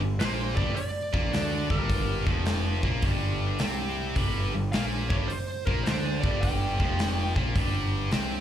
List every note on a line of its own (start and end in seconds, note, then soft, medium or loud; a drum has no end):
0.00 0.19 G1 medium
0.00 0.16 G2 medium
0.19 0.55 A#1 medium
0.19 0.56 A#2 medium
0.19 0.56 A#3 loud
0.19 0.56 C5 loud
0.19 snare loud
0.19 open hi-hat medium
0.56 0.75 G1 medium
0.56 0.75 G2 medium
0.56 0.76 G3 loud
0.56 0.75 D5 loud
0.56 kick medium
0.76 1.66 D5 loud
0.76 muted picked electric bass stroke soft
0.76 muted distorted electric guitar stroke medium
0.76 open hi-hat medium
1.13 1.32 A#1 medium
1.13 1.32 A#2 medium
1.13 1.33 A#3 medium
1.13 kick loud
1.33 1.68 D2 medium
1.33 1.69 D3 medium
1.33 1.70 D4 medium
1.33 snare loud
1.33 open hi-hat medium
1.70 2.23 G1 medium
1.70 2.26 G2 medium
1.70 2.26 G3 medium
1.70 2.24 A#4 medium
1.70 kick loud
1.90 kick loud
1.90 open hi-hat medium
2.26 2.80 F1 medium
2.26 2.82 F2 medium
2.26 2.83 F3 medium
2.26 kick medium
2.46 snare loud
2.46 open hi-hat soft
2.83 3.02 A#1 medium
2.83 3.03 A#2 medium
2.83 3.03 A#3 medium
2.83 kick loud
3.02 3.56 G1 medium
3.02 3.60 G2 medium
3.02 3.60 G3 loud
3.02 kick loud
3.02 open hi-hat medium
3.59 4.12 C2 medium
3.59 4.16 C3 medium
3.59 4.16 C4 medium
3.59 snare loud
3.59 open hi-hat medium
4.16 4.51 G1 medium
4.16 4.52 G2 medium
4.16 4.53 G3 loud
4.16 kick loud
4.16 open hi-hat medium
4.55 4.73 G1 medium
4.55 4.70 G2 medium
4.72 5.08 A#1 medium
4.72 5.10 A#2 medium
4.72 5.10 A#3 medium
4.72 4.82 F5 medium
4.72 snare loud
4.72 open hi-hat medium
5.09 5.29 G1 medium
5.09 5.29 G2 medium
5.09 5.30 G3 loud
5.09 5.15 C#5 medium
5.09 kick loud
5.28 5.63 C5 medium
5.28 muted picked electric bass stroke soft
5.28 muted distorted electric guitar stroke medium
5.28 open hi-hat medium
5.65 5.85 A#1 medium
5.65 5.86 A#2 medium
5.65 5.86 A#3 loud
5.65 5.84 A#4 medium
5.65 kick medium
5.84 6.21 D2 medium
5.84 6.23 D3 medium
5.84 6.23 D4 medium
5.84 6.19 C5 medium
5.84 snare loud
5.84 open hi-hat medium
6.20 6.76 G1 medium
6.20 6.79 G2 medium
6.20 6.79 G3 medium
6.20 6.42 D5 medium
6.20 kick loud
6.41 7.31 G5 medium
6.41 kick loud
6.41 open hi-hat medium
6.79 7.33 F1 medium
6.79 7.35 F2 medium
6.79 7.36 F3 medium
6.79 kick medium
6.99 snare loud
6.99 open hi-hat medium
7.36 7.54 A#1 medium
7.36 7.55 A#2 medium
7.36 7.55 A#3 medium
7.36 kick loud
7.55 8.08 G1 medium
7.55 8.11 G2 medium
7.55 8.12 G3 loud
7.55 kick loud
7.55 open hi-hat medium
8.11 8.40 C2 loud
8.11 8.40 C3 medium
8.11 8.40 C4 medium
8.11 snare loud
8.11 open hi-hat medium